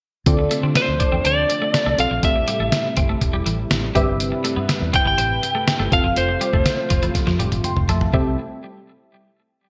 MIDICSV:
0, 0, Header, 1, 8, 480
1, 0, Start_track
1, 0, Key_signature, 0, "major"
1, 0, Tempo, 491803
1, 259, Time_signature, 4, 2, 24, 8
1, 9463, End_track
2, 0, Start_track
2, 0, Title_t, "Lead electric guitar"
2, 0, Program_c, 0, 29
2, 750, Note_on_c, 0, 72, 73
2, 1235, Note_on_c, 0, 74, 83
2, 1239, Note_off_c, 0, 72, 0
2, 1950, Note_off_c, 0, 74, 0
2, 1954, Note_on_c, 0, 77, 91
2, 2170, Note_off_c, 0, 77, 0
2, 2192, Note_on_c, 0, 76, 89
2, 2867, Note_off_c, 0, 76, 0
2, 4837, Note_on_c, 0, 79, 94
2, 4941, Note_off_c, 0, 79, 0
2, 4952, Note_on_c, 0, 79, 102
2, 5787, Note_off_c, 0, 79, 0
2, 5791, Note_on_c, 0, 77, 87
2, 6027, Note_on_c, 0, 72, 76
2, 6032, Note_off_c, 0, 77, 0
2, 6944, Note_off_c, 0, 72, 0
2, 9463, End_track
3, 0, Start_track
3, 0, Title_t, "Synth keys"
3, 0, Program_c, 1, 88
3, 255, Note_on_c, 1, 60, 74
3, 258, Note_on_c, 1, 65, 71
3, 260, Note_on_c, 1, 50, 67
3, 263, Note_on_c, 1, 69, 72
3, 266, Note_on_c, 1, 74, 82
3, 462, Control_c, 1, 64, 127
3, 940, Note_off_c, 1, 50, 0
3, 994, Note_off_c, 1, 60, 0
3, 996, Note_off_c, 1, 65, 0
3, 998, Note_off_c, 1, 69, 0
3, 999, Note_off_c, 1, 74, 0
3, 1935, Note_on_c, 1, 60, 62
3, 1940, Note_on_c, 1, 65, 63
3, 1943, Note_on_c, 1, 69, 62
3, 1947, Note_on_c, 1, 77, 71
3, 2121, Note_off_c, 1, 60, 0
3, 2123, Note_off_c, 1, 65, 0
3, 2125, Note_off_c, 1, 69, 0
3, 2127, Note_off_c, 1, 77, 0
3, 2174, Note_on_c, 1, 60, 64
3, 2178, Note_on_c, 1, 67, 63
3, 2180, Note_on_c, 1, 45, 57
3, 2182, Note_on_c, 1, 69, 60
3, 2186, Note_on_c, 1, 76, 72
3, 2191, Control_c, 1, 64, 0
3, 2343, Control_c, 1, 64, 127
3, 2860, Note_off_c, 1, 45, 0
3, 2913, Note_off_c, 1, 60, 0
3, 2916, Note_off_c, 1, 67, 0
3, 2917, Note_off_c, 1, 69, 0
3, 2920, Note_off_c, 1, 76, 0
3, 3854, Note_on_c, 1, 60, 84
3, 3857, Note_on_c, 1, 67, 76
3, 3859, Note_on_c, 1, 43, 69
3, 3860, Note_on_c, 1, 71, 78
3, 3865, Note_on_c, 1, 76, 97
3, 3869, Control_c, 1, 64, 0
3, 4045, Control_c, 1, 64, 127
3, 4540, Note_off_c, 1, 43, 0
3, 4624, Note_off_c, 1, 60, 0
3, 4626, Note_off_c, 1, 67, 0
3, 4627, Note_off_c, 1, 71, 0
3, 4630, Note_off_c, 1, 76, 0
3, 5775, Note_on_c, 1, 60, 70
3, 5779, Note_on_c, 1, 65, 65
3, 5783, Note_on_c, 1, 69, 68
3, 5787, Note_on_c, 1, 76, 62
3, 5790, Control_c, 1, 64, 0
3, 5841, Note_off_c, 1, 76, 0
3, 5845, Note_on_c, 1, 77, 77
3, 5967, Control_c, 1, 64, 127
3, 6545, Note_off_c, 1, 60, 0
3, 6547, Note_off_c, 1, 65, 0
3, 6549, Note_off_c, 1, 69, 0
3, 6580, Note_off_c, 1, 77, 0
3, 7459, Note_on_c, 1, 84, 56
3, 7465, Note_on_c, 1, 79, 49
3, 7687, Note_off_c, 1, 84, 0
3, 7690, Note_off_c, 1, 79, 0
3, 7700, Note_on_c, 1, 81, 62
3, 7706, Note_on_c, 1, 76, 50
3, 7930, Note_off_c, 1, 76, 0
3, 7941, Note_on_c, 1, 36, 73
3, 7941, Note_on_c, 1, 60, 74
3, 7941, Note_on_c, 1, 67, 67
3, 7941, Note_on_c, 1, 69, 66
3, 7942, Note_on_c, 1, 76, 83
3, 7953, Control_c, 1, 64, 0
3, 8156, Note_off_c, 1, 81, 0
3, 8163, Note_off_c, 1, 36, 0
3, 8163, Note_off_c, 1, 60, 0
3, 8163, Note_off_c, 1, 67, 0
3, 8163, Note_off_c, 1, 69, 0
3, 8163, Note_off_c, 1, 76, 0
3, 9463, End_track
4, 0, Start_track
4, 0, Title_t, "Analog synth pad"
4, 0, Program_c, 2, 89
4, 257, Note_on_c, 2, 53, 63
4, 258, Note_on_c, 2, 57, 64
4, 259, Note_on_c, 2, 62, 77
4, 260, Note_on_c, 2, 48, 72
4, 2159, Note_off_c, 2, 53, 0
4, 2160, Note_off_c, 2, 62, 0
4, 2176, Note_on_c, 2, 55, 66
4, 2176, Note_on_c, 2, 64, 77
4, 3822, Note_off_c, 2, 57, 0
4, 3859, Note_on_c, 2, 71, 65
4, 5741, Note_off_c, 2, 55, 0
4, 5741, Note_off_c, 2, 64, 0
4, 5759, Note_off_c, 2, 71, 0
4, 5772, Note_on_c, 2, 65, 85
4, 5776, Note_on_c, 2, 53, 68
4, 5776, Note_on_c, 2, 57, 68
4, 7900, Note_off_c, 2, 48, 0
4, 7914, Note_off_c, 2, 65, 0
4, 7916, Note_off_c, 2, 53, 0
4, 7916, Note_off_c, 2, 57, 0
4, 7943, Note_on_c, 2, 55, 63
4, 7943, Note_on_c, 2, 57, 64
4, 7943, Note_on_c, 2, 64, 72
4, 7944, Note_on_c, 2, 48, 67
4, 8164, Note_off_c, 2, 55, 0
4, 8164, Note_off_c, 2, 57, 0
4, 8164, Note_off_c, 2, 64, 0
4, 8165, Note_off_c, 2, 48, 0
4, 9463, End_track
5, 0, Start_track
5, 0, Title_t, "Clean electric guitar"
5, 0, Program_c, 3, 27
5, 499, Note_on_c, 3, 57, 68
5, 589, Note_off_c, 3, 57, 0
5, 619, Note_on_c, 3, 60, 69
5, 710, Note_off_c, 3, 60, 0
5, 975, Note_on_c, 3, 62, 74
5, 1067, Note_off_c, 3, 62, 0
5, 1096, Note_on_c, 3, 60, 68
5, 1187, Note_off_c, 3, 60, 0
5, 1217, Note_on_c, 3, 62, 77
5, 1308, Note_off_c, 3, 62, 0
5, 1579, Note_on_c, 3, 57, 68
5, 1670, Note_off_c, 3, 57, 0
5, 1819, Note_on_c, 3, 57, 77
5, 1909, Note_off_c, 3, 57, 0
5, 2061, Note_on_c, 3, 53, 66
5, 2151, Note_off_c, 3, 53, 0
5, 2418, Note_on_c, 3, 55, 70
5, 2509, Note_off_c, 3, 55, 0
5, 2540, Note_on_c, 3, 57, 70
5, 2630, Note_off_c, 3, 57, 0
5, 2900, Note_on_c, 3, 60, 73
5, 2990, Note_off_c, 3, 60, 0
5, 3019, Note_on_c, 3, 57, 69
5, 3109, Note_off_c, 3, 57, 0
5, 3255, Note_on_c, 3, 55, 73
5, 3347, Note_off_c, 3, 55, 0
5, 3377, Note_on_c, 3, 52, 62
5, 3468, Note_off_c, 3, 52, 0
5, 3858, Note_on_c, 3, 55, 73
5, 3949, Note_off_c, 3, 55, 0
5, 4336, Note_on_c, 3, 57, 71
5, 4427, Note_off_c, 3, 57, 0
5, 4455, Note_on_c, 3, 59, 68
5, 4547, Note_off_c, 3, 59, 0
5, 4816, Note_on_c, 3, 60, 77
5, 4907, Note_off_c, 3, 60, 0
5, 4934, Note_on_c, 3, 59, 68
5, 5026, Note_off_c, 3, 59, 0
5, 5055, Note_on_c, 3, 60, 79
5, 5147, Note_off_c, 3, 60, 0
5, 5416, Note_on_c, 3, 57, 70
5, 5508, Note_off_c, 3, 57, 0
5, 5657, Note_on_c, 3, 57, 78
5, 5748, Note_off_c, 3, 57, 0
5, 5896, Note_on_c, 3, 53, 73
5, 5987, Note_off_c, 3, 53, 0
5, 6256, Note_on_c, 3, 55, 68
5, 6347, Note_off_c, 3, 55, 0
5, 6378, Note_on_c, 3, 57, 68
5, 6469, Note_off_c, 3, 57, 0
5, 6737, Note_on_c, 3, 53, 74
5, 6828, Note_off_c, 3, 53, 0
5, 6860, Note_on_c, 3, 52, 74
5, 6950, Note_off_c, 3, 52, 0
5, 7096, Note_on_c, 3, 53, 71
5, 7187, Note_off_c, 3, 53, 0
5, 7217, Note_on_c, 3, 55, 63
5, 7308, Note_off_c, 3, 55, 0
5, 7701, Note_on_c, 3, 57, 68
5, 7791, Note_off_c, 3, 57, 0
5, 7942, Note_on_c, 3, 55, 73
5, 8085, Note_off_c, 3, 55, 0
5, 9463, End_track
6, 0, Start_track
6, 0, Title_t, "Fingered electric bass"
6, 0, Program_c, 4, 33
6, 258, Note_on_c, 4, 38, 97
6, 438, Note_off_c, 4, 38, 0
6, 618, Note_on_c, 4, 50, 84
6, 708, Note_off_c, 4, 50, 0
6, 863, Note_on_c, 4, 38, 70
6, 951, Note_off_c, 4, 38, 0
6, 1099, Note_on_c, 4, 40, 83
6, 1189, Note_off_c, 4, 40, 0
6, 1218, Note_on_c, 4, 38, 81
6, 1398, Note_off_c, 4, 38, 0
6, 1819, Note_on_c, 4, 36, 76
6, 1909, Note_off_c, 4, 36, 0
6, 1935, Note_on_c, 4, 35, 77
6, 2026, Note_off_c, 4, 35, 0
6, 2057, Note_on_c, 4, 34, 77
6, 2148, Note_off_c, 4, 34, 0
6, 2178, Note_on_c, 4, 33, 90
6, 2358, Note_off_c, 4, 33, 0
6, 2536, Note_on_c, 4, 33, 79
6, 2627, Note_off_c, 4, 33, 0
6, 2901, Note_on_c, 4, 31, 84
6, 3080, Note_off_c, 4, 31, 0
6, 3137, Note_on_c, 4, 28, 83
6, 3317, Note_off_c, 4, 28, 0
6, 3375, Note_on_c, 4, 33, 86
6, 3556, Note_off_c, 4, 33, 0
6, 3616, Note_on_c, 4, 33, 79
6, 3797, Note_off_c, 4, 33, 0
6, 3860, Note_on_c, 4, 31, 98
6, 4220, Note_off_c, 4, 31, 0
6, 4457, Note_on_c, 4, 43, 93
6, 4548, Note_off_c, 4, 43, 0
6, 4699, Note_on_c, 4, 40, 74
6, 4789, Note_off_c, 4, 40, 0
6, 4937, Note_on_c, 4, 31, 78
6, 5028, Note_off_c, 4, 31, 0
6, 5056, Note_on_c, 4, 33, 88
6, 5237, Note_off_c, 4, 33, 0
6, 5657, Note_on_c, 4, 31, 80
6, 5748, Note_off_c, 4, 31, 0
6, 5778, Note_on_c, 4, 29, 94
6, 5868, Note_off_c, 4, 29, 0
6, 5894, Note_on_c, 4, 30, 84
6, 5986, Note_off_c, 4, 30, 0
6, 6015, Note_on_c, 4, 29, 97
6, 6196, Note_off_c, 4, 29, 0
6, 6378, Note_on_c, 4, 29, 80
6, 6468, Note_off_c, 4, 29, 0
6, 6742, Note_on_c, 4, 29, 73
6, 6921, Note_off_c, 4, 29, 0
6, 7096, Note_on_c, 4, 41, 86
6, 7187, Note_off_c, 4, 41, 0
6, 7215, Note_on_c, 4, 29, 80
6, 7307, Note_off_c, 4, 29, 0
6, 7338, Note_on_c, 4, 31, 82
6, 7428, Note_off_c, 4, 31, 0
6, 7579, Note_on_c, 4, 29, 75
6, 7669, Note_off_c, 4, 29, 0
6, 7698, Note_on_c, 4, 41, 86
6, 7878, Note_off_c, 4, 41, 0
6, 7939, Note_on_c, 4, 36, 82
6, 8162, Note_off_c, 4, 36, 0
6, 9463, End_track
7, 0, Start_track
7, 0, Title_t, "Muted clean electric guitar strokes"
7, 378, Note_on_c, 9, 29, 42
7, 476, Note_off_c, 9, 29, 0
7, 736, Note_on_c, 9, 29, 40
7, 834, Note_off_c, 9, 29, 0
7, 1458, Note_on_c, 9, 29, 40
7, 1556, Note_off_c, 9, 29, 0
7, 1941, Note_on_c, 9, 29, 41
7, 2038, Note_off_c, 9, 29, 0
7, 2301, Note_on_c, 9, 29, 40
7, 2398, Note_off_c, 9, 29, 0
7, 2658, Note_on_c, 9, 29, 39
7, 2755, Note_off_c, 9, 29, 0
7, 3137, Note_on_c, 9, 29, 42
7, 3235, Note_off_c, 9, 29, 0
7, 4216, Note_on_c, 9, 29, 42
7, 4313, Note_off_c, 9, 29, 0
7, 4574, Note_on_c, 9, 29, 40
7, 4672, Note_off_c, 9, 29, 0
7, 5299, Note_on_c, 9, 29, 39
7, 5397, Note_off_c, 9, 29, 0
7, 5776, Note_on_c, 9, 29, 41
7, 5873, Note_off_c, 9, 29, 0
7, 6136, Note_on_c, 9, 29, 45
7, 6233, Note_off_c, 9, 29, 0
7, 6496, Note_on_c, 9, 29, 40
7, 6594, Note_off_c, 9, 29, 0
7, 6978, Note_on_c, 9, 29, 43
7, 7075, Note_off_c, 9, 29, 0
7, 9463, End_track
8, 0, Start_track
8, 0, Title_t, "Drums"
8, 256, Note_on_c, 9, 42, 87
8, 258, Note_on_c, 9, 36, 103
8, 354, Note_off_c, 9, 42, 0
8, 356, Note_off_c, 9, 36, 0
8, 497, Note_on_c, 9, 42, 75
8, 594, Note_off_c, 9, 42, 0
8, 737, Note_on_c, 9, 38, 108
8, 738, Note_on_c, 9, 42, 81
8, 834, Note_off_c, 9, 38, 0
8, 836, Note_off_c, 9, 42, 0
8, 977, Note_on_c, 9, 42, 69
8, 981, Note_on_c, 9, 36, 94
8, 1074, Note_off_c, 9, 42, 0
8, 1079, Note_off_c, 9, 36, 0
8, 1219, Note_on_c, 9, 42, 73
8, 1317, Note_off_c, 9, 42, 0
8, 1461, Note_on_c, 9, 42, 62
8, 1559, Note_off_c, 9, 42, 0
8, 1699, Note_on_c, 9, 38, 104
8, 1699, Note_on_c, 9, 42, 83
8, 1796, Note_off_c, 9, 38, 0
8, 1796, Note_off_c, 9, 42, 0
8, 1937, Note_on_c, 9, 42, 64
8, 2035, Note_off_c, 9, 42, 0
8, 2177, Note_on_c, 9, 42, 94
8, 2178, Note_on_c, 9, 36, 101
8, 2275, Note_off_c, 9, 42, 0
8, 2276, Note_off_c, 9, 36, 0
8, 2417, Note_on_c, 9, 42, 71
8, 2514, Note_off_c, 9, 42, 0
8, 2657, Note_on_c, 9, 38, 103
8, 2659, Note_on_c, 9, 42, 82
8, 2755, Note_off_c, 9, 38, 0
8, 2756, Note_off_c, 9, 42, 0
8, 2895, Note_on_c, 9, 42, 72
8, 2901, Note_on_c, 9, 36, 97
8, 2992, Note_off_c, 9, 42, 0
8, 2999, Note_off_c, 9, 36, 0
8, 3137, Note_on_c, 9, 42, 73
8, 3138, Note_on_c, 9, 36, 71
8, 3235, Note_off_c, 9, 42, 0
8, 3236, Note_off_c, 9, 36, 0
8, 3380, Note_on_c, 9, 42, 62
8, 3478, Note_off_c, 9, 42, 0
8, 3619, Note_on_c, 9, 38, 104
8, 3620, Note_on_c, 9, 42, 80
8, 3717, Note_off_c, 9, 38, 0
8, 3717, Note_off_c, 9, 42, 0
8, 3859, Note_on_c, 9, 36, 100
8, 3860, Note_on_c, 9, 42, 66
8, 3957, Note_off_c, 9, 36, 0
8, 3957, Note_off_c, 9, 42, 0
8, 4100, Note_on_c, 9, 42, 88
8, 4198, Note_off_c, 9, 42, 0
8, 4340, Note_on_c, 9, 42, 76
8, 4438, Note_off_c, 9, 42, 0
8, 4578, Note_on_c, 9, 38, 102
8, 4580, Note_on_c, 9, 42, 83
8, 4676, Note_off_c, 9, 38, 0
8, 4677, Note_off_c, 9, 42, 0
8, 4818, Note_on_c, 9, 42, 69
8, 4822, Note_on_c, 9, 36, 97
8, 4916, Note_off_c, 9, 42, 0
8, 4920, Note_off_c, 9, 36, 0
8, 5059, Note_on_c, 9, 42, 75
8, 5156, Note_off_c, 9, 42, 0
8, 5302, Note_on_c, 9, 42, 65
8, 5399, Note_off_c, 9, 42, 0
8, 5540, Note_on_c, 9, 38, 109
8, 5540, Note_on_c, 9, 42, 81
8, 5637, Note_off_c, 9, 38, 0
8, 5637, Note_off_c, 9, 42, 0
8, 5779, Note_on_c, 9, 36, 102
8, 5779, Note_on_c, 9, 42, 64
8, 5876, Note_off_c, 9, 36, 0
8, 5876, Note_off_c, 9, 42, 0
8, 6016, Note_on_c, 9, 42, 92
8, 6114, Note_off_c, 9, 42, 0
8, 6258, Note_on_c, 9, 42, 71
8, 6355, Note_off_c, 9, 42, 0
8, 6377, Note_on_c, 9, 36, 89
8, 6475, Note_off_c, 9, 36, 0
8, 6497, Note_on_c, 9, 38, 100
8, 6499, Note_on_c, 9, 42, 81
8, 6595, Note_off_c, 9, 38, 0
8, 6596, Note_off_c, 9, 42, 0
8, 6737, Note_on_c, 9, 42, 76
8, 6742, Note_on_c, 9, 36, 97
8, 6834, Note_off_c, 9, 42, 0
8, 6839, Note_off_c, 9, 36, 0
8, 6857, Note_on_c, 9, 42, 50
8, 6955, Note_off_c, 9, 42, 0
8, 6978, Note_on_c, 9, 36, 78
8, 6978, Note_on_c, 9, 38, 50
8, 6978, Note_on_c, 9, 42, 74
8, 7076, Note_off_c, 9, 36, 0
8, 7076, Note_off_c, 9, 38, 0
8, 7076, Note_off_c, 9, 42, 0
8, 7096, Note_on_c, 9, 38, 48
8, 7194, Note_off_c, 9, 38, 0
8, 7219, Note_on_c, 9, 48, 68
8, 7221, Note_on_c, 9, 42, 66
8, 7316, Note_off_c, 9, 48, 0
8, 7318, Note_off_c, 9, 42, 0
8, 7339, Note_on_c, 9, 48, 57
8, 7341, Note_on_c, 9, 42, 49
8, 7436, Note_off_c, 9, 48, 0
8, 7438, Note_off_c, 9, 42, 0
8, 7457, Note_on_c, 9, 47, 75
8, 7458, Note_on_c, 9, 42, 80
8, 7555, Note_off_c, 9, 47, 0
8, 7556, Note_off_c, 9, 42, 0
8, 7579, Note_on_c, 9, 45, 68
8, 7676, Note_off_c, 9, 45, 0
8, 7700, Note_on_c, 9, 42, 66
8, 7700, Note_on_c, 9, 43, 89
8, 7797, Note_off_c, 9, 42, 0
8, 7797, Note_off_c, 9, 43, 0
8, 7820, Note_on_c, 9, 43, 82
8, 7917, Note_off_c, 9, 43, 0
8, 7940, Note_on_c, 9, 36, 101
8, 8037, Note_off_c, 9, 36, 0
8, 9463, End_track
0, 0, End_of_file